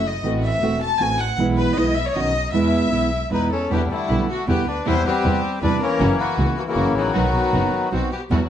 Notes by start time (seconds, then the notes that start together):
Already playing: F#1 A3 E4 F#4
0.07 D#5
0.23 A1 E3 A3 C4 F#4
0.44 E5
0.62 E1 E3 A3 C4 F#4
0.83 A5
0.99 A1 E3 A3 C4 F#4 G#5
1.20 F#5
1.38 B1 B2 E3 G#3 B3 E4
1.57 B4
1.76 B1 B2 E3 G#3 B3 E4 D#5
1.95 E5
2.05 C#5
2.15 B1 B2 D#3 B3 C#4 D#4 F#4 D#5
2.52 E2 B2 E3 G#3 B3 E4 E5
2.91 B1 B2 E3 G#3 B3 E4
3.30 E2 B2 E3 G#3 B3 D#4 E4 B4
3.52 C#4 A4
3.70 E2 B2 D3 G3 B3 D4 E4 G4
3.90 D3 A3 E4
4.09 B1 B2 D3 G3 B3 D4 E4
4.29 A3 F#4
4.47 E2 B2 D3 G3 B3 D4 E4 G4
4.67 D2 D4 B4
4.86 E2 C3 E3 G3 B3 C4 E4 C5
5.06 G3 C4 G4
5.24 E2 C3 E3 G3 B3 C4 E4
5.62 E2 C3 E3 G3 B3 C4 D4 E4 B4
5.80 E3 A#3 C#4 A#4
6.00 F#1 C#3 E3 A#3 C#4 E4 F#4
6.19 E3 B3 F#4
6.38 C#2 C#3 E3 A#3 C#4 E4 F#4
6.58 A#3 F#4
6.67 C#3 E3 A#3 F#4
6.76 F#1 C#3 E3 A#3 C#4 E4 F#4
6.96 A1 D#3 F#3 B3 F#4
7.14 B1 B2 F#3 B3 D#4 F#4
7.52 F#1 B2 F#3 B3 D#4 F#4
7.91 B1 B2 F#3 B3 C4 D#4 F#4
8.12 B3 G4
8.30 E2 B2 E3 F#3 G3 A3 B3 E4 F#4